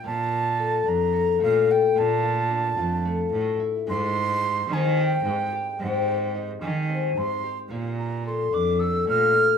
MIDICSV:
0, 0, Header, 1, 4, 480
1, 0, Start_track
1, 0, Tempo, 546946
1, 40, Time_signature, 7, 3, 24, 8
1, 8406, End_track
2, 0, Start_track
2, 0, Title_t, "Flute"
2, 0, Program_c, 0, 73
2, 51, Note_on_c, 0, 81, 92
2, 773, Note_on_c, 0, 82, 99
2, 786, Note_off_c, 0, 81, 0
2, 1248, Note_off_c, 0, 82, 0
2, 1252, Note_on_c, 0, 77, 88
2, 1499, Note_on_c, 0, 79, 92
2, 1512, Note_off_c, 0, 77, 0
2, 1737, Note_on_c, 0, 81, 96
2, 1750, Note_off_c, 0, 79, 0
2, 3171, Note_off_c, 0, 81, 0
2, 3413, Note_on_c, 0, 84, 116
2, 4151, Note_on_c, 0, 80, 92
2, 4164, Note_off_c, 0, 84, 0
2, 4396, Note_on_c, 0, 79, 89
2, 4409, Note_off_c, 0, 80, 0
2, 5100, Note_off_c, 0, 79, 0
2, 5113, Note_on_c, 0, 79, 81
2, 5546, Note_off_c, 0, 79, 0
2, 5816, Note_on_c, 0, 80, 76
2, 6296, Note_on_c, 0, 84, 87
2, 6309, Note_off_c, 0, 80, 0
2, 6650, Note_off_c, 0, 84, 0
2, 7010, Note_on_c, 0, 82, 64
2, 7230, Note_off_c, 0, 82, 0
2, 7250, Note_on_c, 0, 84, 82
2, 7491, Note_on_c, 0, 86, 91
2, 7505, Note_off_c, 0, 84, 0
2, 7717, Note_on_c, 0, 88, 89
2, 7730, Note_off_c, 0, 86, 0
2, 7960, Note_off_c, 0, 88, 0
2, 7971, Note_on_c, 0, 89, 105
2, 8406, Note_off_c, 0, 89, 0
2, 8406, End_track
3, 0, Start_track
3, 0, Title_t, "Harp"
3, 0, Program_c, 1, 46
3, 0, Note_on_c, 1, 62, 54
3, 0, Note_on_c, 1, 65, 61
3, 0, Note_on_c, 1, 67, 61
3, 33, Note_on_c, 1, 58, 75
3, 511, Note_on_c, 1, 69, 67
3, 564, Note_off_c, 1, 58, 0
3, 749, Note_off_c, 1, 62, 0
3, 752, Note_on_c, 1, 62, 75
3, 988, Note_off_c, 1, 69, 0
3, 991, Note_on_c, 1, 69, 69
3, 1135, Note_off_c, 1, 67, 0
3, 1230, Note_on_c, 1, 57, 81
3, 1469, Note_off_c, 1, 65, 0
3, 1473, Note_on_c, 1, 65, 75
3, 1712, Note_on_c, 1, 58, 78
3, 1765, Note_off_c, 1, 57, 0
3, 1765, Note_off_c, 1, 69, 0
3, 1955, Note_off_c, 1, 65, 0
3, 1959, Note_on_c, 1, 65, 73
3, 2193, Note_off_c, 1, 62, 0
3, 2197, Note_on_c, 1, 62, 69
3, 2433, Note_off_c, 1, 65, 0
3, 2436, Note_on_c, 1, 65, 73
3, 2678, Note_on_c, 1, 57, 79
3, 2731, Note_off_c, 1, 58, 0
3, 3156, Note_on_c, 1, 64, 75
3, 3209, Note_off_c, 1, 65, 0
3, 3396, Note_on_c, 1, 56, 82
3, 3449, Note_off_c, 1, 57, 0
3, 3884, Note_on_c, 1, 67, 73
3, 4123, Note_on_c, 1, 60, 83
3, 4366, Note_on_c, 1, 68, 75
3, 4419, Note_off_c, 1, 67, 0
3, 4596, Note_off_c, 1, 56, 0
3, 4606, Note_on_c, 1, 56, 88
3, 4653, Note_off_c, 1, 62, 0
3, 4848, Note_on_c, 1, 67, 76
3, 4900, Note_off_c, 1, 68, 0
3, 5086, Note_off_c, 1, 60, 0
3, 5089, Note_on_c, 1, 60, 89
3, 5330, Note_off_c, 1, 67, 0
3, 5334, Note_on_c, 1, 67, 70
3, 5448, Note_off_c, 1, 64, 0
3, 5571, Note_on_c, 1, 63, 69
3, 5803, Note_off_c, 1, 67, 0
3, 5806, Note_on_c, 1, 67, 78
3, 6041, Note_off_c, 1, 60, 0
3, 6044, Note_on_c, 1, 60, 72
3, 6523, Note_off_c, 1, 67, 0
3, 6527, Note_on_c, 1, 67, 66
3, 6760, Note_on_c, 1, 58, 81
3, 6808, Note_off_c, 1, 56, 0
3, 7243, Note_on_c, 1, 69, 63
3, 7296, Note_off_c, 1, 58, 0
3, 7482, Note_on_c, 1, 62, 82
3, 7534, Note_off_c, 1, 63, 0
3, 7717, Note_off_c, 1, 69, 0
3, 7721, Note_on_c, 1, 69, 68
3, 7959, Note_on_c, 1, 57, 86
3, 8202, Note_on_c, 1, 65, 69
3, 8406, Note_off_c, 1, 57, 0
3, 8406, Note_off_c, 1, 60, 0
3, 8406, Note_off_c, 1, 62, 0
3, 8406, Note_off_c, 1, 65, 0
3, 8406, Note_off_c, 1, 67, 0
3, 8406, Note_off_c, 1, 69, 0
3, 8406, End_track
4, 0, Start_track
4, 0, Title_t, "Cello"
4, 0, Program_c, 2, 42
4, 35, Note_on_c, 2, 46, 81
4, 674, Note_off_c, 2, 46, 0
4, 750, Note_on_c, 2, 41, 86
4, 1179, Note_off_c, 2, 41, 0
4, 1234, Note_on_c, 2, 46, 83
4, 1450, Note_off_c, 2, 46, 0
4, 1718, Note_on_c, 2, 46, 93
4, 2357, Note_off_c, 2, 46, 0
4, 2438, Note_on_c, 2, 41, 87
4, 2864, Note_off_c, 2, 41, 0
4, 2912, Note_on_c, 2, 45, 83
4, 3129, Note_off_c, 2, 45, 0
4, 3398, Note_on_c, 2, 44, 102
4, 4036, Note_off_c, 2, 44, 0
4, 4116, Note_on_c, 2, 51, 93
4, 4543, Note_off_c, 2, 51, 0
4, 4595, Note_on_c, 2, 44, 83
4, 4811, Note_off_c, 2, 44, 0
4, 5082, Note_on_c, 2, 44, 96
4, 5718, Note_off_c, 2, 44, 0
4, 5807, Note_on_c, 2, 51, 77
4, 6229, Note_off_c, 2, 51, 0
4, 6286, Note_on_c, 2, 44, 70
4, 6497, Note_off_c, 2, 44, 0
4, 6758, Note_on_c, 2, 46, 78
4, 7396, Note_off_c, 2, 46, 0
4, 7477, Note_on_c, 2, 41, 85
4, 7903, Note_off_c, 2, 41, 0
4, 7964, Note_on_c, 2, 46, 84
4, 8176, Note_off_c, 2, 46, 0
4, 8406, End_track
0, 0, End_of_file